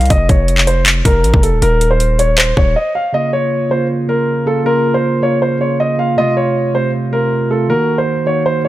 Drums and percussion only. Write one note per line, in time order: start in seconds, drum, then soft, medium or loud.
0.01 closed hi-hat medium
0.06 closed hi-hat soft
0.10 kick loud
0.10 closed hi-hat medium
0.29 kick loud
0.29 closed hi-hat medium
0.48 closed hi-hat medium
0.58 clap medium
0.67 closed hi-hat medium
0.86 clap loud
0.86 closed hi-hat medium
1.05 kick medium
1.05 closed hi-hat medium
1.24 closed hi-hat medium
1.34 kick loud
1.43 closed hi-hat medium
1.62 closed hi-hat medium
1.81 closed hi-hat medium
2.00 closed hi-hat medium
2.19 closed hi-hat medium
2.38 clap loud
2.38 closed hi-hat medium
2.57 kick medium